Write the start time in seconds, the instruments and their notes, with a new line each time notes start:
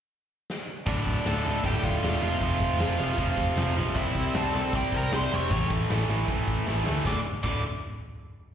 0.50 snare
0.86 picked electric bass D1, distorted electric guitar D2 A2 D3, lead electric guitar D4 D5, kick, open hi-hat
1.06 picked electric bass D1, kick
1.25 picked electric bass D1, distorted electric guitar D2 A2 D3, lead electric guitar A4 A5, snare, open hi-hat
1.45 picked electric bass D1, distorted electric guitar D2 A2 D3
1.63 picked electric bass D1, distorted electric guitar D2 A2 D3, lead electric guitar G4 G5, kick, open hi-hat
1.83 picked electric bass D1, lead electric guitar F4 F5, kick
2.03 picked electric bass E1, distorted electric guitar D2 A2 D3, snare, open hi-hat
2.22 picked electric bass F1, distorted electric guitar F2 C3 F3, lead electric guitar F4 F5
2.41 picked electric bass F1, distorted electric guitar F2 C3 F3, kick, open hi-hat
2.60 picked electric bass F1, kick
2.79 picked electric bass F1, distorted electric guitar F2 C3 F3, snare, open hi-hat
2.99 picked electric bass F1, distorted electric guitar F2 C3 F3
3.17 picked electric bass F1, distorted electric guitar F2 C3 F3, kick, open hi-hat
3.37 picked electric bass F1, kick
3.57 picked electric bass F1, distorted electric guitar F2 C3 F3, snare, open hi-hat
3.76 picked electric bass A#1, distorted electric guitar F2 C3 F3
3.95 picked electric bass C2, distorted electric guitar C3 G3 C4, lead electric guitar E4 E5, kick, crash
4.15 picked electric bass C2, kick
4.34 picked electric bass C2, distorted electric guitar C3 G3 C4, lead electric guitar A4 A5, snare, open hi-hat
4.53 picked electric bass C2, distorted electric guitar C3 G3 C4
4.73 picked electric bass C2, distorted electric guitar C3 G3 C4, lead electric guitar G4, kick, open hi-hat
4.77 lead electric guitar G5
4.92 picked electric bass C2, lead electric guitar A#4 A#5, kick
5.12 picked electric bass C2, distorted electric guitar C3 G3 C4, lead electric guitar C5, snare, open hi-hat
5.16 lead electric guitar C6
5.32 picked electric bass F1, distorted electric guitar C3 G3 C4, lead electric guitar C#5 C#6
5.50 picked electric bass A1, distorted electric guitar A2 E3 A3, kick, open hi-hat
5.70 picked electric bass A1, kick
5.89 picked electric bass A1, distorted electric guitar A2 E3 A3, snare, open hi-hat
6.10 picked electric bass A1, distorted electric guitar A2 E3 A3
6.28 picked electric bass A1, distorted electric guitar A2 E3 A3, kick, open hi-hat
6.48 picked electric bass A1, kick
6.68 picked electric bass A1, distorted electric guitar A2 E3 A3, snare
6.87 picked electric bass D2, distorted electric guitar A2 E3 A3, snare
7.05 picked electric bass D1, distorted electric guitar D2 A2 D3, lead electric guitar D6, kick, snare
7.43 picked electric bass D1, distorted electric guitar D2 A2 D3, lead electric guitar D6, kick, crash